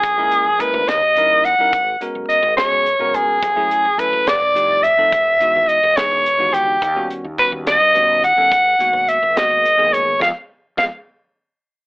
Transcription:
<<
  \new Staff \with { instrumentName = "Soprano saxophone" } { \time 6/8 \key aes \minor \tempo 4. = 71 aes'4 ces''8 ees''4 ges''8~ | ges''8 r8 ees''8 des''4 aes'8~ | aes'4 ces''8 d''4 fes''8~ | fes''4 dis''8 des''4 g'8~ |
g'8 r8 b'8 ees''4 fis''8~ | fis''4 fes''8 ees''4 des''8 | f''8 r8 f''8 r4. | }
  \new Staff \with { instrumentName = "Tine electric piano" } { \time 6/8 \key aes \minor r16 <aes bes des' fes' bes'>8 r16 <aes bes des' fes' bes'>8 r8 <g des' ees' fes' bes'>8 r16 <g des' ees' fes' bes'>16 | r8 <aes ces' des' ges' bes'>8. r16 <aes ces' des' ges' aes'>8 r16 <aes ces' des' ges' bes'>8. | r16 <ges a des' fes' aes'>8 r16 <ges a des' fes' a'>8 r8 <f a c' ees' g'>8 r16 <f a c' ees' a'>16 | r8 <e gis b dis' fis'>8. r16 <e gis b dis' gis'>8 r16 <e gis b dis' fis'>8. |
r16 <ees g b des' fis'>8 r16 <ees g b des' fis'>8. r16 <ees g b des' fis'>8 r16 <ees g b des' a'>16 | r8 <ees aes bes ces' ges'>8. r16 <ees aes bes ces' ges'>8 r16 <ees aes bes ces' aes'>8. | <f aes ces'>8 r8 <f aes ces'>8 r4. | }
  \new Staff \with { instrumentName = "Fretless electric bass" } { \clef bass \time 6/8 \key aes \minor bes,,8 r16 bes,,16 r16 d,16 ees,16 g,16 bes,,8 ees,16 r16 | aes,,8 r16 ces,16 r16 aes,,16 r16 aes,,8 ges,,8 aes,,16 | ges,,8 r16 ges,,16 r16 ges,,16 f,,16 a,,16 c,8 f,,16 r16 | e,,8 r16 gis,,16 r16 e,,16 r16 e,,8 dis,8 d,16 |
ees,8 r16 ees,16 r16 ees,8 g,16 b,,8 ees,16 r16 | aes,,8 r16 ces,16 r16 aes,,16 r16 aes,,8 ges,,8 aes,,16 | f,16 r8. f,16 r4. r16 | }
  \new DrumStaff \with { instrumentName = "Drums" } \drummode { \time 6/8 <hh bd>8 hh8 <hh bd>8 <hh sn>8 hh8 hh8 | <hh bd>8 hh8 hh8 <hh sn>8 hh8 hh8 | <hh bd>8 hh8 <hh bd>8 <hh sn>8 hh8 hh8 | <hh bd>8 hh8 hh8 <hh sn>8 hh8 hh8 |
<hh bd>8 hh8 <hh bd>8 <hh sn>8 hh8 hh8 | <hh bd>8 hh8 hh8 <hh sn>8 hh8 hh8 | <bd sn>4 <bd sn>8 r4. | }
>>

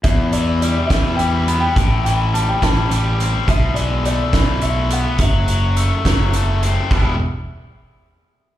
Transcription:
<<
  \new Staff \with { instrumentName = "Felt piano" } { \time 6/8 \key e \minor \tempo 4. = 70 e''8 d''8 d''8 e''8 g''8 b''16 g''16~ | g''8 g''8 a''16 g''16 a''4 r8 | e''8 d''8 d''4 e''8 fis''8 | e''2 r4 |
r2. | }
  \new Staff \with { instrumentName = "Overdriven electric guitar" } { \clef bass \time 6/8 \key e \minor e,8 e8 g8 e8 g8 b8 | a,8 e8 g8 e8 g8 c'8 | b,8 e8 a8 e8 a8 b8 | fis8 fis8 a8 fis8 a8 c'8 |
<e, b, e g b e'>8 r2 r8 | }
  \new Staff \with { instrumentName = "Fingered electric bass" } { \clef bass \time 6/8 \key e \minor e,4. e,4. | a,,4. a,,4. | b,,4. b,,4. | fis,,4. fis,,4. |
e,,8 r2 r8 | }
  \new DrumStaff \with { instrumentName = "Drums" } \drummode { \time 6/8 <hh bd>8 hh8 hh8 <hh bd sn>8 hh8 hh8 | <hh bd>8 hh8 hh8 <hh bd sn>8 hh8 hh8 | <hh bd>8 hh8 hh8 <hh bd sn>8 hh8 hh8 | <hh bd>8 hh8 hh8 <hh bd sn>8 hh8 hh8 |
<cymc bd>4. r4. | }
>>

